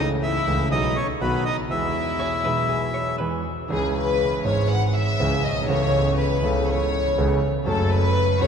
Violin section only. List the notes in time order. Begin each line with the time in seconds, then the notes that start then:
0.24 E4
0.72 D#4
0.98 C#4
1.22 B3
1.47 D#4
1.71 E4
3.70 G#4
3.95 B4
4.44 C#5
4.69 F#5
4.87 F#5
4.95 E5
5.44 D#5
5.68 C#5
6.18 B4
6.67 C#5
7.67 A4
7.91 B4
8.40 C#5